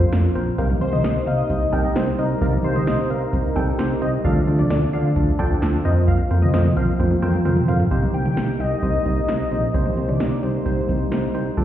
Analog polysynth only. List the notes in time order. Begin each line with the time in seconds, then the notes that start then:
0.58 F5
0.93 D#5
1.04 D#5
1.27 F5
1.73 G5
2.19 D#5
2.42 F5
2.76 D#5
2.87 D#5
3.10 F5
3.56 G5
4.02 D#5
4.25 F5
4.59 D5
4.71 D5
4.93 F5
5.39 G5
5.85 D#5
6.08 F5
6.42 D#5
6.54 D#5
6.77 F5
7.22 G5
7.68 F5